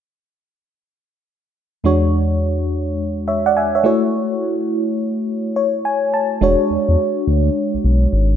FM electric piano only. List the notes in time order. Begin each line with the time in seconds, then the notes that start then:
1.84 E2 G#3 D4 F#4 C#5
3.28 C#5 E5
3.46 D5 F#5
3.57 E5 G#5
3.75 C#5 E5
3.84 A3 E4 F#4 C#5
5.56 C#5
5.85 G#5
6.14 A5
6.41 G#3 D4 F#4 C#5